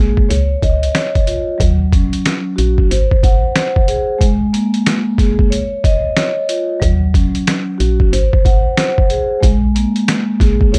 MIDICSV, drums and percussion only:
0, 0, Header, 1, 2, 480
1, 0, Start_track
1, 0, Tempo, 652174
1, 1178, Time_signature, 4, 2, 24, 8
1, 7940, End_track
2, 0, Start_track
2, 0, Title_t, "Drums"
2, 127, Note_on_c, 9, 36, 87
2, 200, Note_off_c, 9, 36, 0
2, 224, Note_on_c, 9, 42, 89
2, 298, Note_off_c, 9, 42, 0
2, 460, Note_on_c, 9, 36, 89
2, 463, Note_on_c, 9, 42, 71
2, 533, Note_off_c, 9, 36, 0
2, 537, Note_off_c, 9, 42, 0
2, 611, Note_on_c, 9, 42, 52
2, 685, Note_off_c, 9, 42, 0
2, 698, Note_on_c, 9, 38, 111
2, 704, Note_on_c, 9, 42, 85
2, 771, Note_off_c, 9, 38, 0
2, 778, Note_off_c, 9, 42, 0
2, 849, Note_on_c, 9, 36, 93
2, 849, Note_on_c, 9, 42, 54
2, 922, Note_off_c, 9, 42, 0
2, 923, Note_off_c, 9, 36, 0
2, 937, Note_on_c, 9, 42, 73
2, 1010, Note_off_c, 9, 42, 0
2, 1177, Note_on_c, 9, 36, 103
2, 1181, Note_on_c, 9, 42, 101
2, 1251, Note_off_c, 9, 36, 0
2, 1255, Note_off_c, 9, 42, 0
2, 1417, Note_on_c, 9, 36, 98
2, 1421, Note_on_c, 9, 42, 71
2, 1491, Note_off_c, 9, 36, 0
2, 1495, Note_off_c, 9, 42, 0
2, 1568, Note_on_c, 9, 42, 56
2, 1641, Note_off_c, 9, 42, 0
2, 1660, Note_on_c, 9, 42, 109
2, 1662, Note_on_c, 9, 38, 108
2, 1734, Note_off_c, 9, 42, 0
2, 1735, Note_off_c, 9, 38, 0
2, 1901, Note_on_c, 9, 42, 64
2, 1975, Note_off_c, 9, 42, 0
2, 2047, Note_on_c, 9, 36, 88
2, 2120, Note_off_c, 9, 36, 0
2, 2143, Note_on_c, 9, 42, 92
2, 2217, Note_off_c, 9, 42, 0
2, 2292, Note_on_c, 9, 36, 88
2, 2366, Note_off_c, 9, 36, 0
2, 2379, Note_on_c, 9, 36, 95
2, 2382, Note_on_c, 9, 42, 73
2, 2453, Note_off_c, 9, 36, 0
2, 2455, Note_off_c, 9, 42, 0
2, 2617, Note_on_c, 9, 38, 117
2, 2623, Note_on_c, 9, 42, 85
2, 2691, Note_off_c, 9, 38, 0
2, 2697, Note_off_c, 9, 42, 0
2, 2769, Note_on_c, 9, 36, 97
2, 2843, Note_off_c, 9, 36, 0
2, 2856, Note_on_c, 9, 42, 77
2, 2930, Note_off_c, 9, 42, 0
2, 3097, Note_on_c, 9, 36, 101
2, 3101, Note_on_c, 9, 42, 103
2, 3171, Note_off_c, 9, 36, 0
2, 3175, Note_off_c, 9, 42, 0
2, 3341, Note_on_c, 9, 42, 68
2, 3415, Note_off_c, 9, 42, 0
2, 3488, Note_on_c, 9, 42, 55
2, 3561, Note_off_c, 9, 42, 0
2, 3580, Note_on_c, 9, 42, 109
2, 3581, Note_on_c, 9, 38, 114
2, 3653, Note_off_c, 9, 42, 0
2, 3655, Note_off_c, 9, 38, 0
2, 3815, Note_on_c, 9, 36, 88
2, 3820, Note_on_c, 9, 38, 37
2, 3821, Note_on_c, 9, 42, 63
2, 3888, Note_off_c, 9, 36, 0
2, 3894, Note_off_c, 9, 38, 0
2, 3895, Note_off_c, 9, 42, 0
2, 3967, Note_on_c, 9, 36, 90
2, 4040, Note_off_c, 9, 36, 0
2, 4064, Note_on_c, 9, 42, 93
2, 4138, Note_off_c, 9, 42, 0
2, 4299, Note_on_c, 9, 36, 95
2, 4303, Note_on_c, 9, 42, 74
2, 4373, Note_off_c, 9, 36, 0
2, 4377, Note_off_c, 9, 42, 0
2, 4538, Note_on_c, 9, 38, 113
2, 4544, Note_on_c, 9, 42, 88
2, 4612, Note_off_c, 9, 38, 0
2, 4618, Note_off_c, 9, 42, 0
2, 4776, Note_on_c, 9, 42, 77
2, 4850, Note_off_c, 9, 42, 0
2, 5017, Note_on_c, 9, 36, 100
2, 5021, Note_on_c, 9, 42, 103
2, 5091, Note_off_c, 9, 36, 0
2, 5095, Note_off_c, 9, 42, 0
2, 5257, Note_on_c, 9, 36, 96
2, 5261, Note_on_c, 9, 42, 69
2, 5331, Note_off_c, 9, 36, 0
2, 5335, Note_off_c, 9, 42, 0
2, 5409, Note_on_c, 9, 42, 55
2, 5482, Note_off_c, 9, 42, 0
2, 5500, Note_on_c, 9, 42, 111
2, 5502, Note_on_c, 9, 38, 109
2, 5574, Note_off_c, 9, 42, 0
2, 5576, Note_off_c, 9, 38, 0
2, 5742, Note_on_c, 9, 42, 64
2, 5816, Note_off_c, 9, 42, 0
2, 5887, Note_on_c, 9, 36, 91
2, 5961, Note_off_c, 9, 36, 0
2, 5984, Note_on_c, 9, 42, 93
2, 6058, Note_off_c, 9, 42, 0
2, 6133, Note_on_c, 9, 36, 91
2, 6206, Note_off_c, 9, 36, 0
2, 6220, Note_on_c, 9, 36, 93
2, 6223, Note_on_c, 9, 42, 73
2, 6293, Note_off_c, 9, 36, 0
2, 6297, Note_off_c, 9, 42, 0
2, 6458, Note_on_c, 9, 38, 112
2, 6465, Note_on_c, 9, 42, 88
2, 6532, Note_off_c, 9, 38, 0
2, 6538, Note_off_c, 9, 42, 0
2, 6610, Note_on_c, 9, 36, 95
2, 6683, Note_off_c, 9, 36, 0
2, 6697, Note_on_c, 9, 42, 78
2, 6771, Note_off_c, 9, 42, 0
2, 6938, Note_on_c, 9, 36, 102
2, 6942, Note_on_c, 9, 42, 100
2, 7011, Note_off_c, 9, 36, 0
2, 7015, Note_off_c, 9, 42, 0
2, 7182, Note_on_c, 9, 42, 70
2, 7256, Note_off_c, 9, 42, 0
2, 7329, Note_on_c, 9, 42, 56
2, 7403, Note_off_c, 9, 42, 0
2, 7420, Note_on_c, 9, 42, 114
2, 7422, Note_on_c, 9, 38, 108
2, 7494, Note_off_c, 9, 42, 0
2, 7495, Note_off_c, 9, 38, 0
2, 7655, Note_on_c, 9, 36, 90
2, 7661, Note_on_c, 9, 38, 37
2, 7662, Note_on_c, 9, 42, 63
2, 7729, Note_off_c, 9, 36, 0
2, 7734, Note_off_c, 9, 38, 0
2, 7736, Note_off_c, 9, 42, 0
2, 7807, Note_on_c, 9, 36, 91
2, 7881, Note_off_c, 9, 36, 0
2, 7905, Note_on_c, 9, 42, 94
2, 7940, Note_off_c, 9, 42, 0
2, 7940, End_track
0, 0, End_of_file